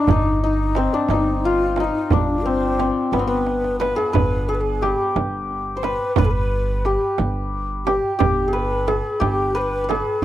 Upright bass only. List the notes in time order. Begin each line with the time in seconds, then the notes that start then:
0.08 G1
1.09 G1
2.11 G1
3.12 G1
4.14 G1
5.16 G1
6.17 G1
7.19 G1
8.21 G1
9.21 G1